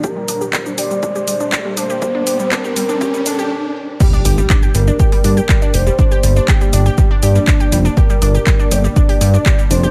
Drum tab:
CC |----------------|----------------|x---------------|----------------|
HH |--o---o---o---o-|--o---o---o-----|--o---o--oo---o-|--o---o---o---o-|
SH |x-xxxxxxxxxxx-xx|x-xxxxxxxxxx----|xxxxxxxxx-xxxxxx|xxxxxxxxx-xxxxxx|
CP |----x-------x---|----x-----------|----x-------x---|----x-------x---|
BD |o---o---o---o---|o---o---o-------|o---o---o---o---|o---o---o---o---|

CC |----------------|
HH |--o---o--oo---o-|
SH |xxxxxxxxx-xxxxxx|
CP |----x-------x---|
BD |o---o---o---o---|